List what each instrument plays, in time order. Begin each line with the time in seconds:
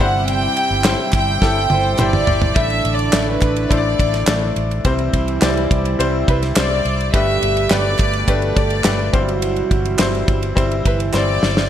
0.00 fingered electric bass G1, grand piano G2 E4 G4 C5, french horn section C3 C4, analog synth pad C3 G3 E4, violin section F#5
0.28 violin section G5, ride
0.57 ride
0.70 fingered electric bass G1
0.84 grand piano E4 G4 C5, snare, clap, ride
1.12 fingered electric bass G1, violin section G5, kick, clap, ride
1.41 fingered electric bass G1, grand piano E4 G4 A4, kick, snare
1.70 fingered electric bass G1, violin section C5, high tom
1.98 fingered electric bass G1, french horn section E3 E4, grand piano E4 G4 C5, violin section D5, clap, mid tom
2.13 mid tom
2.27 fingered electric bass G1, floor tom
2.42 floor tom
2.55 fingered electric bass A1, grand piano A2 A3 D4 E4 D5, french horn section D3 D4, analog synth pad D3 A3 E4, violin section E5, kick, ride
2.70 ride
2.84 fingered electric bass A1, ride
2.95 violin section D5, ride
3.12 fingered electric bass A1, grand piano A3 D4 E4 D5, snare, clap, ride
3.33 violin section B4
3.41 fingered electric bass A1, kick, clap, ride
3.56 ride
3.70 fingered electric bass A1, grand piano A3 D4 E4 C5, violin section D5, kick, ride
3.77 grand piano D5
3.99 fingered electric bass A1, kick, ride
4.14 snare, ride
4.27 fingered electric bass A1, grand piano A3 D4 E4 D5, snare, clap, ride
4.56 fingered electric bass A1, ride
4.71 ride
4.85 fingered electric bass C2, grand piano C3 G3 C4 E4 C5, analog synth pad C3 G3 E4, french horn section E3 E4, kick, ride
4.99 ride
5.13 fingered electric bass C2, kick, ride
5.28 ride
5.42 fingered electric bass C2, grand piano G3 C4 E4 D5, snare, clap, ride
5.57 ride
5.71 fingered electric bass C2, kick, ride
5.85 ride
5.99 fingered electric bass C2, grand piano G3 C4 E4 C5, ride
6.28 fingered electric bass C2, violin section B4, kick, ride
6.43 snare, ride
6.56 fingered electric bass C2, grand piano G3 C4 E4 C5, violin section D5, snare, clap, ride
6.85 fingered electric bass C2, ride
7.00 ride
7.13 fingered electric bass G1, grand piano G2 A3 D4 G4 B4, analog synth pad B2 A3 G4, french horn section G3 G4, violin section E5, kick, ride
7.42 fingered electric bass G1, ride
7.57 ride
7.70 fingered electric bass G1, grand piano A3 D4 G4 B4, violin section D5, snare, clap, ride
7.99 fingered electric bass G1, kick, clap, ride
8.13 ride
8.27 fingered electric bass G1, grand piano A3 D4 G4 D5, french horn section A3 A4, violin section B4, kick, ride
8.42 ride
8.56 fingered electric bass G1, violin section D5, kick, ride
8.70 ride
8.84 fingered electric bass G1, grand piano A3 D4 G4 B4, snare, clap, ride
9.13 fingered electric bass G1, grand piano G2 G3 C4 E4 C5, analog synth pad C3 E3 E4, french horn section F#3 F#4, kick, ride
9.29 ride
9.42 ride
9.56 ride
9.71 fingered electric bass G1, kick, ride
9.85 ride
9.99 fingered electric bass G1, grand piano G3 C4 E4 C5, snare, clap, ride
10.15 ride
10.28 fingered electric bass G1, kick, ride
10.43 ride
10.55 fingered electric bass G1, grand piano G3 C4 E4 C5, kick, ride
10.71 ride
10.85 fingered electric bass G1, french horn section E3 E4, violin section B4, kick, ride
11.00 ride
11.13 fingered electric bass G1, grand piano G3 C4 E4 C5, violin section D5, snare, clap
11.43 fingered electric bass G1, snare
11.57 snare